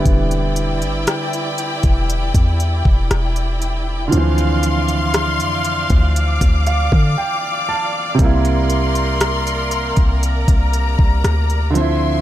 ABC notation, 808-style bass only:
X:1
M:4/4
L:1/16
Q:1/4=59
K:Cmix
V:1 name="808-style bass" clef=bass
E,,,3 G,,, z3 E,,,2 E,,2 E,,, E,,,4 | D,,4- D,, F,,2 D,,2 D,,2 D, z4 | C,,6- C,, C,,2 C,,2 C,, D,,4 |]